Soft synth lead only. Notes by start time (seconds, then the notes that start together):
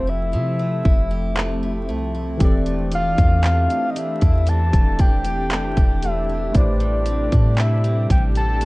Already playing: C5
0.09 E5
2.95 F5
3.90 D#5
3.98 E5
4.49 A5
5.01 G5
6.05 E5
6.56 D5
7.60 E5
8.11 G5
8.37 A5